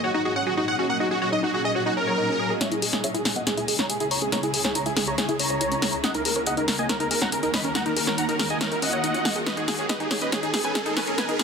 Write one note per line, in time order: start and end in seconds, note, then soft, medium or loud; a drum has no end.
0.00 2.58 A#2 medium
0.00 2.58 F#3 medium
0.00 2.58 C#4 medium
0.00 0.11 F#4 medium
0.00 2.58 G#4 medium
0.00 0.08 C#5 medium
0.00 2.57 D#5 medium
0.14 0.21 D#4 loud
0.14 0.22 F#4 medium
0.25 0.33 F#4 medium
0.25 0.32 G#4 medium
0.36 0.46 C#4 medium
0.36 0.43 F#5 loud
0.46 0.54 F#4 medium
0.46 0.56 G#4 medium
0.57 0.64 D#4 loud
0.57 0.65 F#4 medium
0.68 0.78 C#5 medium
0.68 0.75 F#5 medium
0.79 0.83 C#4 loud
0.79 0.86 F#4 medium
0.89 0.93 A#3 medium
0.89 0.97 F#5 medium
1.00 1.07 D#4 loud
1.00 1.08 F#4 medium
1.11 1.18 F#4 medium
1.11 1.17 G#4 medium
1.22 1.29 F#4 medium
1.22 1.28 C#5 loud
1.32 1.39 D#4 medium
1.32 1.40 D#5 medium
1.43 1.49 D#4 loud
1.43 1.51 F#4 medium
1.54 1.61 F#4 medium
1.54 1.60 G#4 medium
1.65 1.71 G#4 medium
1.65 1.72 D#5 medium
1.75 1.83 F#4 medium
1.75 1.85 C#5 medium
1.86 1.92 D#4 loud
1.86 1.94 F#4 medium
1.97 2.03 C#4 medium
1.97 2.53 A#4 medium
2.07 2.14 C#5 loud
2.18 2.25 D#4 medium
2.29 2.33 C#4 medium
2.39 2.46 G#4 medium
2.50 2.57 G#4 medium
2.61 6.00 C#2 medium
2.61 6.00 C#3 medium
2.61 6.00 G#3 medium
2.61 2.67 C#4 medium
2.61 6.00 E4 medium
2.61 6.00 G#4 medium
2.61 2.68 C#5 medium
2.61 2.68 E5 loud
2.61 snare soft
2.61 closed hi-hat medium
2.61 riser medium
2.72 2.78 E4 loud
2.72 2.79 G#4 medium
2.72 closed hi-hat soft
2.82 2.89 G#4 medium
2.82 2.90 G#4 medium
2.82 open hi-hat loud
2.93 3.01 G#4 medium
2.93 2.97 C#5 medium
2.93 snare soft
2.93 closed hi-hat soft
3.04 3.13 G#4 medium
3.04 3.11 C#5 medium
3.04 3.11 E5 medium
3.04 closed hi-hat loud
3.14 3.21 E4 loud
3.14 3.22 G#4 medium
3.14 closed hi-hat soft
3.25 3.33 G#4 medium
3.25 3.35 C#5 medium
3.25 snare soft
3.25 open hi-hat medium
3.36 3.42 B3 medium
3.36 3.43 D#5 medium
3.36 3.43 F#5 medium
3.36 closed hi-hat soft
3.47 3.54 G#4 medium
3.47 3.50 C#5 medium
3.47 snare soft
3.47 closed hi-hat medium
3.57 3.64 E4 loud
3.57 3.65 G#4 medium
3.57 closed hi-hat soft
3.68 3.74 G#4 medium
3.68 3.76 G#4 medium
3.68 open hi-hat loud
3.79 3.88 C#4 medium
3.79 3.86 C#5 medium
3.79 3.86 A#5 medium
3.79 snare soft
3.79 closed hi-hat soft
3.90 3.99 G#4 medium
3.90 3.97 G#4 medium
3.90 closed hi-hat medium
4.00 4.07 E4 loud
4.00 4.08 G#4 medium
4.00 closed hi-hat soft
4.11 4.18 C#5 medium
4.11 4.21 C#5 medium
4.11 4.18 A#5 medium
4.11 open hi-hat medium
4.22 4.25 C#4 loud
4.22 4.29 G#4 medium
4.22 closed hi-hat soft
4.32 4.36 B3 medium
4.32 4.40 C#5 medium
4.32 4.40 A#5 medium
4.32 snare medium
4.32 closed hi-hat medium
4.43 4.50 E4 loud
4.43 4.51 G#4 medium
4.43 closed hi-hat soft
4.54 4.61 G#4 medium
4.54 4.60 G#4 medium
4.54 open hi-hat loud
4.65 4.72 G#4 medium
4.65 4.71 C#5 loud
4.65 snare soft
4.75 4.82 E4 medium
4.75 4.83 C#5 medium
4.75 4.83 A#5 medium
4.75 closed hi-hat medium
4.86 4.92 E4 loud
4.86 4.93 G#4 medium
4.86 closed hi-hat soft
4.97 5.04 G#4 medium
4.97 5.03 G#4 medium
4.97 snare medium
4.97 open hi-hat medium
5.07 5.14 G#4 medium
5.07 5.15 C#5 medium
5.07 5.15 A#5 medium
5.07 closed hi-hat soft
5.18 5.25 G#4 medium
5.18 5.28 C#5 medium
5.18 snare medium
5.18 closed hi-hat medium
5.29 5.35 E4 loud
5.29 5.36 G#4 medium
5.29 closed hi-hat soft
5.39 5.46 C#4 medium
5.39 5.95 C#5 medium
5.39 5.95 A#5 loud
5.39 open hi-hat loud
5.50 5.57 C#5 loud
5.50 closed hi-hat soft
5.61 5.67 E4 medium
5.61 closed hi-hat medium
5.72 5.76 C#4 medium
5.72 closed hi-hat soft
5.82 5.89 G#4 medium
5.82 snare medium
5.82 open hi-hat medium
5.93 6.00 G#4 medium
5.93 closed hi-hat soft
6.04 9.43 D#2 medium
6.04 9.43 D#3 medium
6.04 9.43 A#3 medium
6.04 6.10 C#4 medium
6.04 9.43 F#4 medium
6.04 9.43 A#4 medium
6.04 6.11 D#5 medium
6.04 6.11 F#5 loud
6.04 snare medium
6.04 closed hi-hat medium
6.14 6.21 D#4 loud
6.14 6.22 A#4 medium
6.14 closed hi-hat soft
6.25 6.32 G#4 medium
6.25 6.33 A#4 medium
6.25 open hi-hat loud
6.36 6.43 A#4 medium
6.36 6.40 C#5 medium
6.36 closed hi-hat soft
6.46 6.56 G#4 medium
6.46 6.54 D#5 medium
6.46 6.54 F#5 medium
6.46 closed hi-hat medium
6.57 6.64 D#4 loud
6.57 6.65 A#4 medium
6.57 closed hi-hat soft
6.68 6.76 A#4 medium
6.68 6.78 C#5 medium
6.68 snare medium
6.68 open hi-hat loud
6.79 6.85 A#3 medium
6.79 6.86 D#5 medium
6.79 6.86 G#5 medium
6.79 closed hi-hat soft
6.89 6.97 A#4 medium
6.89 6.93 C#5 medium
6.89 snare medium
6.89 closed hi-hat medium
7.00 7.07 D#4 loud
7.00 7.08 A#4 medium
7.00 closed hi-hat soft
7.11 7.17 G#4 medium
7.11 7.18 A#4 medium
7.11 open hi-hat loud
7.22 7.31 C#4 medium
7.22 7.29 F#5 medium
7.22 7.29 A#5 loud
7.22 snare medium
7.32 7.42 G#4 medium
7.32 7.40 A#4 medium
7.32 closed hi-hat medium
7.43 7.49 D#4 loud
7.43 7.51 A#4 medium
7.43 closed hi-hat soft
7.54 7.63 C#5 medium
7.54 7.61 D#5 medium
7.54 7.61 B5 medium
7.54 snare medium
7.54 open hi-hat loud
7.64 7.68 C#4 loud
7.64 7.72 A#4 medium
7.64 closed hi-hat soft
7.75 7.79 A#3 medium
7.75 7.83 F#5 medium
7.75 7.83 A#5 medium
7.75 snare medium
7.75 closed hi-hat medium
7.86 7.92 D#4 loud
7.86 7.93 A#4 medium
7.86 closed hi-hat soft
7.96 8.03 G#4 medium
7.96 8.04 A#4 medium
7.96 open hi-hat loud
8.07 8.15 A#4 medium
8.07 8.14 C#5 loud
8.07 snare medium
8.18 8.24 D#4 medium
8.18 8.25 F#5 medium
8.18 8.25 A#5 medium
8.18 closed hi-hat medium
8.29 8.35 D#4 loud
8.29 8.36 A#4 medium
8.29 closed hi-hat soft
8.39 8.46 G#4 medium
8.39 8.47 A#4 medium
8.39 snare medium
8.39 open hi-hat medium
8.50 8.57 G#4 medium
8.50 8.58 D#5 medium
8.50 8.58 G#5 medium
8.50 closed hi-hat soft
8.61 8.68 A#4 medium
8.61 8.70 C#5 medium
8.61 snare medium
8.61 closed hi-hat medium
8.72 8.78 D#4 loud
8.72 8.79 A#4 medium
8.72 closed hi-hat soft
8.82 8.89 C#4 medium
8.82 9.38 D#5 medium
8.82 9.38 F#5 loud
8.82 open hi-hat loud
8.93 8.99 C#5 loud
8.93 closed hi-hat soft
9.04 9.10 D#4 medium
9.04 closed hi-hat medium
9.14 9.18 C#4 medium
9.14 closed hi-hat soft
9.25 9.32 G#4 medium
9.25 snare medium
9.25 open hi-hat loud
9.36 9.42 G#4 medium
9.36 closed hi-hat soft
9.46 11.43 G#2 medium
9.46 11.43 D#3 medium
9.46 11.43 B3 medium
9.46 9.53 C#4 medium
9.46 11.43 G#4 medium
9.46 9.54 B4 medium
9.46 11.43 D#5 medium
9.46 9.54 D#5 loud
9.46 snare medium
9.46 closed hi-hat medium
9.57 9.64 D#4 loud
9.57 9.65 G#4 medium
9.57 closed hi-hat soft
9.68 9.75 G#4 medium
9.68 9.74 G#4 medium
9.68 snare medium
9.68 open hi-hat loud
9.79 9.86 G#4 medium
9.79 9.83 C#5 medium
9.79 closed hi-hat soft
9.89 9.99 G#4 medium
9.89 9.97 B4 medium
9.89 9.97 D#5 medium
9.89 snare medium
9.89 closed hi-hat medium
10.00 10.07 D#4 loud
10.00 10.08 G#4 medium
10.00 closed hi-hat soft
10.11 10.18 G#4 medium
10.11 10.21 C#5 medium
10.11 snare medium
10.11 open hi-hat medium
10.22 10.31 C#4 medium
10.22 10.29 B4 medium
10.22 10.29 D#5 medium
10.22 closed hi-hat soft
10.32 10.40 G#4 medium
10.32 10.36 C#5 medium
10.32 snare medium
10.32 closed hi-hat medium
10.43 10.49 D#4 loud
10.43 10.50 G#4 medium
10.43 closed hi-hat soft
10.54 10.60 G#4 medium
10.54 10.61 G#4 medium
10.54 snare medium
10.54 open hi-hat loud
10.64 10.74 C#4 medium
10.64 10.72 B4 medium
10.64 10.72 G#5 loud
10.64 closed hi-hat soft
10.75 10.85 G#4 medium
10.75 10.83 G#4 medium
10.75 snare medium
10.75 closed hi-hat medium
10.86 10.92 D#4 loud
10.86 10.93 G#4 medium
10.86 closed hi-hat soft
10.97 11.04 B4 medium
10.97 11.06 C#5 medium
10.97 11.04 G#5 medium
10.97 snare medium
10.97 open hi-hat medium
11.07 11.11 C#4 loud
11.07 11.15 G#4 medium
11.07 closed hi-hat soft
11.18 11.22 B3 medium
11.18 11.26 B4 medium
11.18 11.26 G#5 medium
11.18 snare medium
11.18 closed hi-hat medium
11.29 11.35 D#4 loud
11.29 11.36 G#4 medium
11.29 closed hi-hat soft
11.39 11.43 G#4 medium
11.39 snare medium
11.39 open hi-hat loud